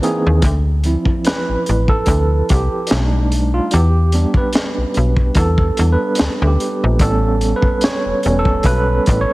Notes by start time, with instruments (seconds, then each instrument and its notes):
0.02 tine electric piano E3 A#3 C4 D#4 G#4, closed hi-hat
0.27 fm bass D#2
0.42 fm bass D2, kick, closed hi-hat
0.84 tine electric piano F3 C4 E4, closed hi-hat
1.05 kick
1.25 tine electric piano B4, snare, closed hi-hat
1.49 fm bass A1
1.66 fm bass A1, closed hi-hat
1.88 tine electric piano A4, kick
2.06 fm bass D2, kick, closed hi-hat
2.49 fm bass C2, tine electric piano G4, kick, closed hi-hat
2.87 tine electric piano G3, closed hi-hat
2.91 fm bass B1, tine electric piano A3 D4 D#4, snare
3.32 closed hi-hat
3.54 tine electric piano F4
3.71 fm bass E2, tine electric piano G4, closed hi-hat
4.12 tine electric piano G3 B3 D4, closed hi-hat
4.34 tine electric piano B4, kick
4.53 snare, closed hi-hat
4.78 fm bass B1
4.94 fm bass B1, closed hi-hat
5.17 kick
5.35 fm bass E2, tine electric piano A4, kick, closed hi-hat
5.58 kick
5.77 fm bass E2, tine electric piano G3 B3 D4, closed hi-hat
5.92 tine electric piano B4
6.15 closed hi-hat
6.19 fm bass D2, snare
6.42 fm bass D2
6.47 tine electric piano G4
6.60 closed hi-hat
6.84 fm bass A#1
6.99 fm bass A1, tine electric piano G3 B3 C#4 A4, kick, closed hi-hat
7.41 closed hi-hat
7.56 tine electric piano B4
7.62 kick
7.81 tine electric piano C#5, snare, closed hi-hat
8.06 fm bass E1
8.23 fm bass E1, tine electric piano G3 B3 C#4, closed hi-hat
8.39 tine electric piano A4
8.45 kick
8.63 fm bass B1, tine electric piano B4, kick, closed hi-hat
9.06 fm bass A1, kick, closed hi-hat
9.21 tine electric piano C#5